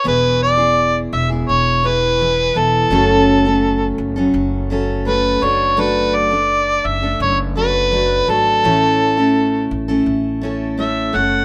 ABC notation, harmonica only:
X:1
M:4/4
L:1/8
Q:1/4=84
K:Emix
V:1 name="Harmonica"
B d2 e c B2 A- | A3 z3 B c | B d2 e c B2 A- | A3 z3 e f |]